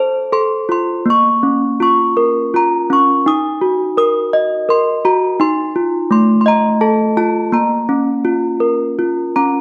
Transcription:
handbells
Already playing: A4 C5 A5
0.32 A4 C6
0.69 F4 C6
1.06 A#3
1.10 C#6
1.43 C#4
1.80 F4 C#6
2.17 A#4
2.54 F4 A#5
2.90 C#4 C#6
3.26 D#4 D#6
3.61 F#4
3.97 A#4 D#6
4.33 D#5
4.69 A#4 C6
5.05 F#4 A#5
5.40 D#4 C6
5.76 F4
6.11 A3 C6
6.41 C6
6.46 D#5 A#5
6.81 A4 A5
7.17 F4 A5
7.52 A#3 A#5
7.89 C#4
8.25 F4
8.60 A#4
8.99 F4
9.36 C#4 A#5

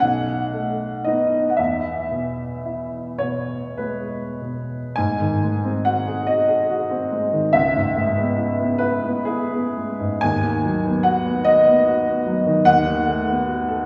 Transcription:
upright piano
0.00 B1 F#5
0.53 A3
1.04 B3 D#4 D#5
1.50 F#5
1.57 E2 E5
2.11 B2
2.65 E4
3.19 B2 C#5
3.77 G#3 B4
4.42 B2
4.96 G#2 G#5
5.21 D#3
5.43 G#3
5.64 C4
5.85 F#4 F#5
6.07 G#4
6.27 F#4 D#5
6.49 G#4
6.70 F#4
6.91 C4
7.12 G#3
7.33 D#3
7.53 C#2 E5
7.75 G#2
7.96 G#3
8.18 B3
8.38 E4
8.59 B3
8.78 E4 B4
9.03 B3
9.25 E4 G#4
9.51 B3
9.77 G#3
10.00 G#2
10.21 D#2 G#5
10.45 D#3
10.65 F#3
10.85 B3
11.03 F#4 F#5
11.25 B3
11.44 F#4 D#5
11.67 B3
11.87 F#4
12.07 B3
12.26 F#3
12.46 D#3
12.65 D#2 F#5
12.86 D#3
13.06 A3
13.27 B3
13.48 F#4
13.68 A4

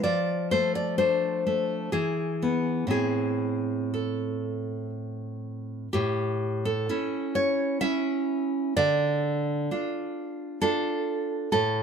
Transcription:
nylon-string guitar
0.03 F3 D5
0.51 A3 C5
0.75 D5
0.98 A3 D4 C5
1.47 A3
1.92 E3 G#4
2.42 B3
2.87 A2 C4 E4 G#4
3.94 A4
5.93 A2 G4
6.65 A4
6.89 C#4 E4
7.35 C#5
7.81 C#4 E4 E5
8.77 D3 D5
9.71 D4 F4
10.62 D4 F4 A4
11.52 A2 A4

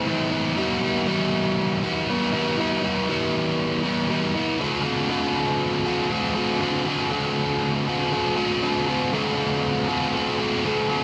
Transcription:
overdriven electric guitar
0.07 E3 A3 C4 E4
0.31 A3 C4 E4
0.56 E3 G3 B3 E4
0.82 G3 B3 E4
1.07 E3 G3 B3 E4
1.83 G3 B3 E4
2.08 E3 G3 B3 E4
2.32 G3 B3 E4
2.58 E3 G3 B3 E4
2.84 G3 B3 E4
3.08 E3 G3 B3 E4
3.83 G3 B3 E4
4.08 E3 G3 B3 E4
4.34 G3 B3 E4
4.59 D3 A3 C4 F#4 A4
4.84 C4 F#4 A4
5.09 D3 A3 C4 F#4 A4
5.85 C4 F#4 A4
6.10 A3 C4 F#4 A4
6.35 C4 F#4 A4
6.60 D3 A3 C4 F#4 A4
6.86 C4 F#4 A4
7.10 D3 A3 C4 F#4 A4
7.87 C4 F#4 A4
8.12 A3 C4 F#4 A4
8.37 C4 F#4 A4
8.62 D3 A3 C4 F#4 A4
8.87 C4 F#4 A4
9.12 D3 A3 C4 F#4 A4
9.88 C4 F#4 A4
10.14 A3 C4 F#4 A4
10.39 C4 F#4 A4
10.64 D3 A3 C4 F#4 A4
10.89 C4 F#4 A4

